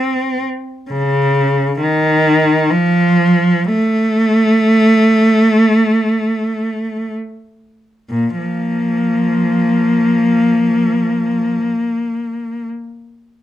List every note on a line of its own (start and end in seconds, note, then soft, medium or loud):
0.00 0.43 C4 medium
0.91 1.76 C#3 medium
1.81 2.71 D#3 medium
2.70 3.68 F3 medium
3.67 7.13 A3 medium
8.10 8.38 A#2 soft
8.38 11.61 F3 soft
8.38 12.66 A#3 soft